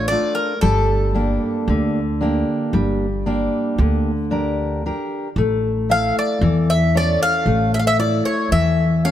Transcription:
Already playing: A1 F4
0.08 A3 D4 F4 D5
0.35 A#4
0.61 G1 G3 A4
1.15 A#3 D4 G4
1.68 D2 D3
2.21 A#3 D4 G4
2.73 G1 G3
3.26 A#3 D4 G4
3.78 D2 D3
4.31 D4 G4 A#4
4.86 D4 G4 A#4
5.36 A1 A3
5.89 E4 A4 E5 F5
6.19 D5
6.41 E2 E3
6.70 E5
6.95 C#4 A4 C#5 D5
7.23 F5
7.46 A1 A3
7.74 E5
7.79 F5
7.87 E5
7.99 E4 A4 C#5 D5
8.25 C#5
8.52 E2 E3 E5
9.05 C#4 A4 C#5 F5

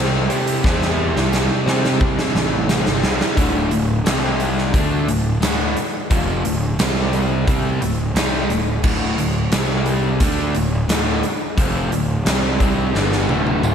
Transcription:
Already playing: C2 C3 G3 C4 E4 G4 C5
0.00 C4
0.29 C3 G3 C4 E4 G4 C5, closed hi-hat
0.47 closed hi-hat
0.64 E2 C3 G3 C4 E4 G4 C5, kick, snare
0.82 snare
1.16 C2, snare
1.33 snare, tambourine
1.66 C3 G3 C4, snare
1.85 snare
2.01 kick
2.19 snare
2.35 A1, snare
2.68 C3 G3 C4, snare, tambourine
2.86 G1, snare
3.02 C2 C3 G3 C4 E4 G4 C5, snare
3.21 snare
3.37 D1 D2 A2 D3, kick, closed hi-hat
3.71 D1 D2 A2, closed hi-hat
4.06 C2 C3 G3 C4, snare, closed hi-hat, tambourine
4.40 closed hi-hat
4.58 snare
4.74 D2 D3 A3 D4, kick, closed hi-hat
5.08 D1 D2 A2, closed hi-hat
5.42 D1 D2 A2 D3, snare, closed hi-hat, tambourine
5.77 closed hi-hat
6.11 F1 F2 C3 F3, kick, closed hi-hat
6.45 D1 D2 A2, closed hi-hat
6.79 C2 C3 G3 C4, snare, closed hi-hat, tambourine
7.13 closed hi-hat
7.47 C2 C3 G3 C4, kick, closed hi-hat
7.82 D1 D2 A2, closed hi-hat
8.15 C2 C3 G3 C4, snare, closed hi-hat, tambourine
8.50 D1 D2 A2, closed hi-hat
8.83 D1 D2 A2 D3, kick, crash
9.18 D1 D2 A2, closed hi-hat
9.52 C2 C3 G3 C4, snare, closed hi-hat, tambourine
9.86 closed hi-hat
10.20 D2 D3 A3 D4, kick, closed hi-hat
10.55 D1 D2 A2, closed hi-hat
10.89 D1 D2 A2 D3, snare, closed hi-hat, tambourine
11.23 closed hi-hat
11.58 F1 F2 C3 F3, kick, closed hi-hat
11.91 D1 D2 A2, closed hi-hat
12.26 C2 C3 G3 C4, snare, closed hi-hat, tambourine
12.60 C2 C3 G3 C4, kick, closed hi-hat
12.95 G1 G2 D3 G3, snare
13.12 snare
13.28 D1 D2 A2 D3, high tom
13.47 high tom
13.63 mid tom, tambourine

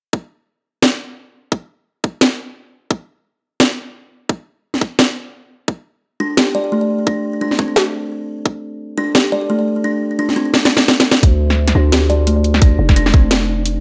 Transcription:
0.13 kick
0.83 snare
1.52 kick
2.04 kick
2.21 snare
2.91 kick
3.60 snare
4.29 kick
4.74 snare
4.81 kick
4.99 snare
5.68 kick
6.20 D4
6.37 G4, snare
6.55 D5
6.72 A3
7.07 D4, kick
7.41 D4
7.51 snare
7.59 C4, kick
7.76 snare
8.46 kick
8.98 D4
9.15 G4, snare
9.32 D5
9.50 A3
9.84 D4
10.19 D4
10.29 snare
10.36 C4
10.54 snare
10.65 snare
10.77 snare
10.88 snare
11.00 snare
11.12 snare
11.23 D2, kick, closed hi-hat
11.50 snare
11.68 snare, closed hi-hat
11.75 D2 D4
11.92 G4, snare, closed hi-hat
12.10 D5, closed hi-hat
12.27 A3, closed hi-hat
12.44 closed hi-hat
12.54 snare
12.62 D4, kick, closed hi-hat
12.79 F1
12.89 kick, snare
12.96 D4, closed hi-hat
13.06 snare
13.14 C4, kick
13.31 snare, closed hi-hat
13.66 closed hi-hat

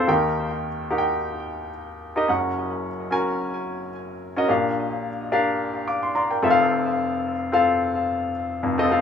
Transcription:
Already playing: C4 F4 A4 C5 F5
0.07 D#2 D#3 D#4 G4 A#4 G5
0.90 D#4 G4 A#4 F#5
0.98 G5
2.16 D#4 G4 A#4 D#5
2.28 F#1 F#2 C#4 F#4 A#4 F#5
3.11 C#4 F#4 A#4 G#5
4.37 C#4 F#4 A#4 D#5
4.48 A#1 A#2 D4 G4 A#4 F5
5.32 D4 G4 A#4 F5
5.88 F5 D6
6.03 C6
6.15 D5 A#5 C6
6.31 A#4 G5
6.42 F1 F2 C4 F4 A4 E5
6.50 F5
7.52 C4 F4 A4 F5
8.63 F1 F2
8.78 C4 F4 A4 D#5
8.90 C4 F4 A4 F5

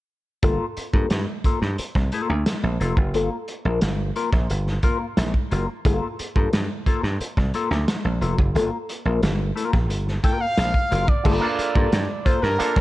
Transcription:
0.43 G1 A#3 F4 A4, kick, closed hi-hat
0.77 muted clean electric guitar stroke, muted slap bass stroke, closed hi-hat
0.93 G2 A#3 F4 A4, kick
1.10 G2, snare, closed hi-hat
1.44 A#3 F4 A4, muted slap bass stroke, kick, closed hi-hat
1.62 G2, muted clean electric guitar stroke, snare
1.78 muted slap bass stroke, muted clean electric guitar stroke, closed hi-hat
1.95 C2, muted clean electric guitar stroke, kick, snare
2.12 A#3 F4 A4, closed hi-hat
2.29 D2, muted clean electric guitar stroke
2.46 muted clean electric guitar stroke, snare, closed hi-hat
2.63 A#1
2.80 F1 A#3 F4 A4, closed hi-hat
2.97 F#1, muted clean electric guitar stroke, kick
3.14 G1 A#3 F4 A4, closed hi-hat
3.32 muted clean electric guitar stroke
3.48 muted clean electric guitar stroke, closed hi-hat
3.65 A#1 A#3 F4 A#4
3.81 G1, muted clean electric guitar stroke, snare, closed hi-hat
3.99 muted clean electric guitar stroke
4.16 A#3 F4 A#4, closed hi-hat
4.33 A#1, muted clean electric guitar stroke, kick, snare
4.50 G1, muted clean electric guitar stroke, closed hi-hat
4.67 muted clean electric guitar stroke, snare
4.83 A#3 F4 A#4, kick, closed hi-hat
5.00 muted clean electric guitar stroke
5.17 A#1, muted clean electric guitar stroke, snare, closed hi-hat
5.34 kick
5.51 F#1 A#3 F4 A#4, closed hi-hat
5.68 muted clean electric guitar stroke
5.85 G1 A#3 F4 A4, kick, closed hi-hat
6.19 muted clean electric guitar stroke, muted slap bass stroke, closed hi-hat
6.36 G2 A#3 F4 A4, kick
6.53 G2, snare, closed hi-hat
6.86 A#3 F4 A4, muted slap bass stroke, kick, closed hi-hat
7.03 G2, muted clean electric guitar stroke, snare
7.20 muted slap bass stroke, muted clean electric guitar stroke, closed hi-hat
7.37 C2, muted clean electric guitar stroke, kick, snare
7.54 A#3 F4 A4, closed hi-hat
7.71 D2, muted clean electric guitar stroke, snare
7.88 muted clean electric guitar stroke, snare, closed hi-hat
8.05 A#1
8.21 F1 A#3 F4 A4, closed hi-hat
8.39 F#1, muted clean electric guitar stroke, kick
8.55 G1 A#3 F4 A4, closed hi-hat
8.73 muted clean electric guitar stroke
8.89 muted clean electric guitar stroke, closed hi-hat
9.05 A#1 A#3 F4 A#4
9.22 G1, muted clean electric guitar stroke, snare, closed hi-hat
9.39 muted clean electric guitar stroke
9.56 A#3 F4 A#4, closed hi-hat
9.73 A#1, muted clean electric guitar stroke, kick, snare
9.90 G1, muted clean electric guitar stroke, closed hi-hat
10.07 muted clean electric guitar stroke, snare
10.23 A#3 F4 A#4 G5, kick, closed hi-hat
10.40 F5, muted clean electric guitar stroke
10.57 A#1, muted clean electric guitar stroke, snare, closed hi-hat
10.74 kick
10.91 F#1 A#3 F4 A#4, closed hi-hat
11.08 D5, muted clean electric guitar stroke, kick
11.24 G1 A#3 F4 A4, kick, crash
11.41 A#3 D4 F4 A4
11.58 muted clean electric guitar stroke, muted slap bass stroke, closed hi-hat
11.75 G2 A#3 F4 A4, kick
11.92 G2, muted clean electric guitar stroke, snare, closed hi-hat
12.25 A#3 F4 A4 C5, muted slap bass stroke, kick, closed hi-hat
12.42 G2 A#4, muted clean electric guitar stroke, snare
12.59 A#3 D4 F4 A4, muted clean electric guitar stroke, muted slap bass stroke, closed hi-hat
12.76 C2, muted clean electric guitar stroke, kick, snare

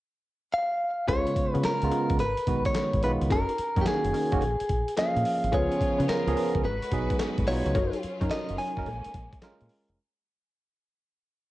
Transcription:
0.54 F5
1.07 C#2 C#3 G#3 B3 C#4 F4 G#4 C#5, kick, closed hi-hat, cowbell
1.27 closed hi-hat
1.36 muted fingered electric bass stroke, kick, closed hi-hat
1.54 C#3 B3 C#4 F4 G#4 B4, closed hi-hat
1.64 A#4, muted fingered electric bass stroke, snare, clap, closed hi-hat, cowbell
1.82 C#2 C#3 G#3 B3 F4, closed hi-hat
1.91 B3 C#4 F4 G#4, closed hi-hat
2.10 C#2, kick, closed hi-hat
2.19 G#1 B4, closed hi-hat, cowbell
2.37 muted fingered electric bass stroke, closed hi-hat
2.47 B1 D#3 G#3 B3 F#4, kick, closed hi-hat
2.65 C#5, kick, closed hi-hat
2.75 snare, clap, closed hi-hat, cowbell
2.93 G#1, kick, closed hi-hat
3.03 B1 D#3 G#3 B3 F4 B4, closed hi-hat
3.21 C#2, closed hi-hat
3.30 F#1 C#4 D#4 F#4 A#4, kick, closed hi-hat, cowbell
3.49 closed hi-hat
3.58 muted fingered electric bass stroke, closed hi-hat
3.76 F#2 D#3 A#3 C#4 D#4 F#4 A#4, kick, closed hi-hat
3.81 G4
3.86 G#4, muted fingered electric bass stroke, snare, clap, closed hi-hat, cowbell
4.05 F#1, closed hi-hat
4.13 C#4 D#4 F#4 A#4, open hi-hat
4.32 F#1 D#3 A#3 C#4 F#4, kick, closed hi-hat
4.41 A#1, closed hi-hat, cowbell
4.60 muted fingered electric bass stroke, closed hi-hat
4.69 A#1, kick, closed hi-hat
4.88 closed hi-hat
4.97 F3 A#3 C#4 G#4 F5, snare, clap, closed hi-hat, cowbell
5.16 A#2, closed hi-hat
5.25 open hi-hat
5.44 G#1, closed hi-hat
5.52 C#2 C#3 F3 B3 C#4 F4 G#4 B4 C#5, kick, closed hi-hat, cowbell
5.72 closed hi-hat
5.81 muted fingered electric bass stroke, kick, closed hi-hat
5.99 C#3 C#4 F4 G#4 B4, closed hi-hat
6.08 A#4, muted fingered electric bass stroke, snare, clap, closed hi-hat, cowbell
6.27 C#2 F3 B3 C#4 G#4, closed hi-hat
6.36 C#4 F4 G#4 B4, open hi-hat
6.55 C#2, kick, closed hi-hat
6.64 G#1 G#3 F#4 B4, closed hi-hat, cowbell
6.82 closed hi-hat
6.92 B1 F#3 B3 D#4 G#4, kick, closed hi-hat
7.10 kick, closed hi-hat
7.19 snare, clap, closed hi-hat, cowbell
7.38 G#1, kick, closed hi-hat
7.47 B1 F#3 B3 D#4 F4 C#5, open hi-hat
7.66 C#2, closed hi-hat
7.74 F#1 F#3 C#4 D#4 F4 F#4 A#4 C#5, kick, closed hi-hat, cowbell
7.93 closed hi-hat
8.03 muted fingered electric bass stroke, closed hi-hat
8.21 F#2 F#3 C#4 D#4 F#4 A#4 C#5, kick, closed hi-hat
8.31 D#5, muted fingered electric bass stroke, snare, clap, closed hi-hat, cowbell
8.49 F#1, closed hi-hat
8.58 D#4 F#4 A#4 C#5 G#5, open hi-hat
8.77 F#1 F#3 C#4 D#4 A#4, kick, snare, closed hi-hat
8.86 A#1 G#3 A#3, closed hi-hat, cowbell
9.04 closed hi-hat
9.14 A#1, kick, closed hi-hat
9.33 kick, closed hi-hat
9.42 G#3 C#4 F4 A#4, snare, clap, closed hi-hat, cowbell
9.61 A#2, closed hi-hat
9.69 open hi-hat
9.88 F1, closed hi-hat

